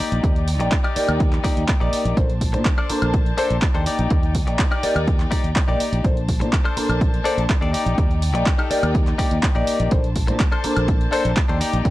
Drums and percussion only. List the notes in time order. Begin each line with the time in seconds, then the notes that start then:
0.12 closed hi-hat
0.24 kick, closed hi-hat
0.36 closed hi-hat
0.48 open hi-hat
0.60 closed hi-hat
0.72 kick, clap, closed hi-hat
0.84 closed hi-hat, high woodblock
0.96 open hi-hat
1.08 closed hi-hat, high woodblock
1.20 kick, closed hi-hat
1.33 clap, closed hi-hat
1.44 kick, open hi-hat
1.57 closed hi-hat
1.68 kick, clap, closed hi-hat
1.81 closed hi-hat
1.93 open hi-hat
2.05 closed hi-hat
2.17 kick, closed hi-hat
2.30 closed hi-hat
2.41 kick, open hi-hat
2.54 closed hi-hat
2.65 kick, clap, closed hi-hat
2.78 closed hi-hat, high woodblock
2.90 open hi-hat
3.02 closed hi-hat, high woodblock
3.14 kick, closed hi-hat
3.26 closed hi-hat
3.38 open hi-hat
3.50 closed hi-hat
3.62 kick, clap, closed hi-hat
3.75 closed hi-hat
3.86 open hi-hat
3.99 closed hi-hat
4.10 kick, closed hi-hat
4.23 closed hi-hat
4.35 kick, open hi-hat
4.47 closed hi-hat
4.59 kick, clap, closed hi-hat
4.72 closed hi-hat, high woodblock
4.83 open hi-hat
4.96 closed hi-hat, high woodblock
5.08 kick, closed hi-hat
5.20 clap, closed hi-hat
5.32 kick, open hi-hat
5.44 closed hi-hat
5.56 kick, clap, closed hi-hat
5.68 closed hi-hat
5.80 open hi-hat
5.93 closed hi-hat
6.04 kick, closed hi-hat
6.17 closed hi-hat
6.29 kick, open hi-hat
6.41 closed hi-hat
6.53 kick, clap, closed hi-hat
6.65 closed hi-hat, high woodblock
6.77 open hi-hat
6.90 closed hi-hat, high woodblock
7.01 kick, closed hi-hat
7.14 closed hi-hat
7.25 open hi-hat
7.38 closed hi-hat
7.50 kick, clap, closed hi-hat
7.62 closed hi-hat
7.74 open hi-hat
7.86 closed hi-hat
7.98 kick, closed hi-hat
8.11 closed hi-hat
8.22 open hi-hat
8.35 closed hi-hat
8.46 kick, clap, closed hi-hat
8.59 closed hi-hat, high woodblock
8.71 open hi-hat
8.83 closed hi-hat, high woodblock
8.95 kick, closed hi-hat
9.07 clap, closed hi-hat
9.19 kick, open hi-hat
9.31 closed hi-hat
9.43 kick, clap, closed hi-hat
9.55 closed hi-hat
9.67 open hi-hat
9.80 closed hi-hat
9.91 kick, closed hi-hat
10.04 closed hi-hat
10.16 kick, open hi-hat
10.28 closed hi-hat
10.40 kick, clap, closed hi-hat
10.52 closed hi-hat, high woodblock
10.64 open hi-hat
10.77 closed hi-hat, high woodblock
10.88 kick, closed hi-hat
11.01 closed hi-hat
11.13 open hi-hat
11.25 closed hi-hat
11.37 kick, clap, closed hi-hat
11.49 closed hi-hat
11.61 open hi-hat
11.73 closed hi-hat
11.85 kick, closed hi-hat